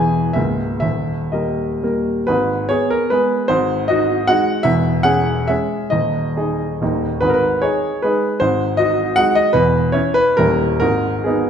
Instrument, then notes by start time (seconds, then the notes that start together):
grand piano
Already playing: E1 E2 E3 B3 G#4 B4 G#5
0.33 C#1 C#2 G#3 A#3 A#4 E5
0.80 D#1 D#2 E5
1.32 G3 A#3 A#4 D#5
1.83 G3 A#3 A#4
2.27 G#1 G#2 B4
2.69 B3 G#4 C#5
2.90 A#4
3.10 G#3 B3 G#4 B4
3.48 G#1 G#2 C5
3.88 D#4 F#4 D#5
4.27 G#3 D#4 F#4 F#5
4.63 E1 E2 E5
5.03 C#4 G#4 F#5
5.48 G#3 C#4 G#4 E5
5.90 D#1 D#2 D#5
6.37 D#4 G#4
6.81 D#1 D#2 A#3 D#4 G4
7.21 G#1 G#2 B4
7.29 A#4
7.34 B4
7.62 D#4 G#4 C#5
8.02 G#3 D#4 G#4 B4
8.40 G#1 G#2 C5
8.77 D#4 F#4 D#5
9.16 G#3 D#4 F#4 F#5
9.35 D#5
9.53 E1 E2 B4
9.92 C#4 E4 C#5
10.14 B4
10.37 D#1 D#2 G3 C#4 E4 A#4
10.80 G#1 G#2 A#4
11.24 B3 D#4 G#4